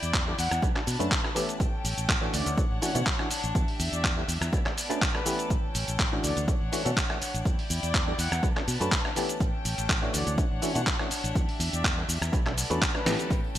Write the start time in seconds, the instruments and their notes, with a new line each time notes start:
Already playing: violin section E4 D5 G5
0.02 fingered electric bass E2, trumpet section D5, closed hi-hat, cabasa
0.14 kick, clap, closed hi-hat, cabasa
0.27 clav G3 B3 D4 E4 A4, trumpet section D5
0.38 fingered electric bass E2, trumpet section F#5, open hi-hat, cabasa
0.51 fingered electric bass E2, cross-stick, closed hi-hat, cabasa
0.62 fingered electric bass B1, clav A3 C#4 D4 F#4 B4, violin section D4 B4 A5, kick, closed hi-hat, cabasa
0.75 clav A3 C#4 D4 F#4 A4, cross-stick, clap
0.87 fingered electric bass B2, open hi-hat, cabasa
0.99 fingered electric bass F#2, clav A3 C#4 D4 F#4 B4, closed hi-hat, cabasa
1.11 kick, clap, cabasa
1.24 clav A3 C#4 D4 F#4 B4, cross-stick
1.35 clav E3 A3 B3 C#4 G4, open hi-hat, cabasa
1.49 closed hi-hat, cabasa
1.60 fingered electric bass A1, violin section C#4 A4 G5, kick, closed hi-hat, cabasa
1.84 fingered electric bass A1, open hi-hat, cabasa
1.98 fingered electric bass A1, closed hi-hat, cabasa
2.09 kick, clap, cabasa
2.21 clav E3 A3 C#4 D4 F#4
2.33 fingered electric bass D2, violin section D4 C#5 F#5, trumpet section D5, open hi-hat, cabasa
2.46 fingered electric bass D2, closed hi-hat, cabasa
2.57 clav E3 A3 C#4 D4 F#4, muted fingered electric bass stroke, kick, closed hi-hat, cabasa
2.71 fingered electric bass A1
2.82 clav E3 A3 C#4 D4 F#4, open hi-hat, cabasa
2.95 fingered electric bass B2, clav E3 A3 C#4 D4 F#4, closed hi-hat, cabasa
3.06 kick, clap, cabasa
3.19 clav E3 A3 C#4 D4 F#4, cross-stick
3.31 muted fingered electric bass stroke, open hi-hat, cabasa
3.44 fingered electric bass A1, closed hi-hat, cabasa
3.55 fingered electric bass E2, violin section G4 E5, kick, closed hi-hat, cabasa
3.68 open hi-hat
3.80 fingered electric bass E2, open hi-hat, cabasa
3.92 fingered electric bass E2, trumpet section D5, closed hi-hat, cabasa
4.04 kick, clap, cabasa
4.17 clav G3 B3 D4 E4 A4
4.28 fingered electric bass E2, open hi-hat, cabasa
4.41 fingered electric bass E2, cross-stick, closed hi-hat, cabasa
4.53 clav A3 C#4 D4 F#4 B4, violin section B3 A4 D5, kick, closed hi-hat, cabasa
4.65 clav A3 C#4 D4 F#4 A4, cross-stick, clap
4.78 open hi-hat, cabasa
4.89 clav A3 C#4 D4 F#4 B4, closed hi-hat, cabasa
5.02 kick, clap, closed hi-hat, cabasa
5.14 clav A3 C#4 D4 F#4 B4, trumpet section B4, cross-stick
5.25 clav E3 A3 B3 C#4 G4, open hi-hat, cabasa
5.39 closed hi-hat, cabasa
5.50 fingered electric bass A1, violin section C#4 G5, kick, closed hi-hat, cabasa
5.75 fingered electric bass A1, open hi-hat, cabasa
5.88 fingered electric bass A1, closed hi-hat, cabasa
5.99 kick, clap, closed hi-hat, cabasa
6.12 clav E3 A3 C#4 D4 F#4
6.24 fingered electric bass D2, violin section D4 C#5 F#5, trumpet section D5, open hi-hat, cabasa
6.37 fingered electric bass D2, closed hi-hat, cabasa
6.48 clav E3 A3 C#4 D4 F#4, muted fingered electric bass stroke, kick, closed hi-hat, cabasa
6.61 fingered electric bass A1
6.72 clav E3 A3 C#4 D4 F#4, open hi-hat, cabasa
6.85 fingered electric bass B2, clav E3 A3 C#4 D4 F#4, closed hi-hat, cabasa
6.97 kick, clap, closed hi-hat, cabasa
7.09 clav E3 A3 C#4 D4 F#4, cross-stick
7.22 muted fingered electric bass stroke, open hi-hat, cabasa
7.34 fingered electric bass A1, closed hi-hat, cabasa
7.45 fingered electric bass E2, violin section E4 D5 G5, kick, closed hi-hat, cabasa
7.59 open hi-hat
7.70 fingered electric bass E2, open hi-hat, cabasa
7.83 fingered electric bass E2, trumpet section D5, closed hi-hat, cabasa
7.94 kick, clap, closed hi-hat, cabasa
8.07 clav G3 B3 D4 E4 A4, trumpet section D5
8.18 fingered electric bass E2, trumpet section F#5, open hi-hat, cabasa
8.32 fingered electric bass E2, cross-stick, closed hi-hat, cabasa
8.43 fingered electric bass B1, clav A3 C#4 D4 F#4 B4, violin section D4 B4 A5, kick, closed hi-hat, cabasa
8.56 clav A3 C#4 D4 F#4 A4, cross-stick, clap
8.68 fingered electric bass B2, open hi-hat, cabasa
8.80 fingered electric bass F#2, clav A3 C#4 D4 F#4 B4, closed hi-hat, cabasa
8.92 kick, clap, closed hi-hat, cabasa
9.05 clav A3 C#4 D4 F#4 B4, cross-stick
9.16 clav E3 A3 B3 C#4 G4, open hi-hat, cabasa
9.29 closed hi-hat, cabasa
9.40 fingered electric bass A1, violin section C#4 A4 G5, kick, closed hi-hat, cabasa
9.65 fingered electric bass A1, open hi-hat, cabasa
9.78 fingered electric bass A1, closed hi-hat, cabasa
9.89 kick, clap, closed hi-hat, cabasa
10.02 clav E3 A3 C#4 D4 F#4
10.14 fingered electric bass D2, violin section D4 C#5 F#5, trumpet section D5, open hi-hat, cabasa
10.27 fingered electric bass D2, closed hi-hat, cabasa
10.38 clav E3 A3 C#4 D4 F#4, muted fingered electric bass stroke, kick, closed hi-hat, cabasa
10.51 fingered electric bass A1
10.62 clav E3 A3 C#4 D4 F#4, open hi-hat, cabasa
10.75 fingered electric bass B2, clav E3 A3 C#4 D4 F#4, closed hi-hat, cabasa
10.87 kick, clap, closed hi-hat, cabasa
10.99 clav E3 A3 C#4 D4 F#4, cross-stick
11.11 muted fingered electric bass stroke, open hi-hat, cabasa
11.24 fingered electric bass A1, closed hi-hat, cabasa
11.35 fingered electric bass E2, violin section G4 E5, kick, closed hi-hat, cabasa
11.49 open hi-hat
11.60 fingered electric bass E2, open hi-hat, cabasa
11.73 fingered electric bass E2, trumpet section D5, closed hi-hat, cabasa
11.84 kick, clap, closed hi-hat, cabasa
11.97 clav G3 B3 D4 E4 A4
12.08 fingered electric bass E2, open hi-hat, cabasa
12.21 fingered electric bass E2, cross-stick, closed hi-hat, cabasa
12.32 fingered electric bass B1, clav A3 C#4 D4 F#4 B4, violin section B3 A4 D5, kick, closed hi-hat, cabasa
12.46 clav A3 C#4 D4 F#4 A4, cross-stick, clap
12.58 open hi-hat, cabasa
12.70 fingered electric bass E2, clav A3 C#4 D4 F#4 B4, closed hi-hat, cabasa
12.82 kick, clap, closed hi-hat, cabasa
12.94 clav A3 C#4 D4 F#4 B4, trumpet section B4, cross-stick
13.05 fingered electric bass A2, clav E3 A3 B3 C#4 G4, snare, open hi-hat, cabasa
13.19 closed hi-hat, cabasa
13.31 fingered electric bass A1, violin section C#4 G5, kick, closed hi-hat, tambourine, cabasa
13.44 tambourine
13.55 fingered electric bass A1, open hi-hat, cabasa